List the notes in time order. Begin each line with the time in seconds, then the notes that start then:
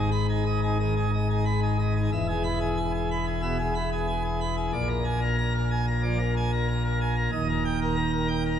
Already playing: G#1 G#2
0.12 B5
0.29 D#4 G#4
0.46 D#5
0.63 D#4 G#4
0.80 D#3 D#5
0.96 D#4 G#4
1.14 D#5
1.30 D#4 G#4
1.45 B5
1.62 D#4 G#4
1.79 D#5
1.96 D#4 G#4
2.12 E1 E2 E5
2.28 G#4
2.44 B5
2.60 G#4
2.77 G#5
2.94 G#4
3.11 B5
3.27 G#4
3.42 B2 E5
3.58 G#4
3.75 B5
3.92 G#4
4.08 G#5
4.24 G#4
4.41 B5
4.57 G#4
4.72 A#1 A#2 D5
4.89 A#4
5.05 G#5
5.21 A#4
5.38 A#5
5.54 A#4
5.71 G#5
5.87 A#4
6.03 F3 D5
6.19 A#4
6.37 G#5
6.52 A#4
6.68 A#5
6.84 A#4
7.01 G#5
7.16 A#4
7.32 D#1 D#2 D#5
7.49 A#4
7.65 G5
7.82 A#4
7.96 A#5
8.13 A#4
8.28 G5
8.45 A#4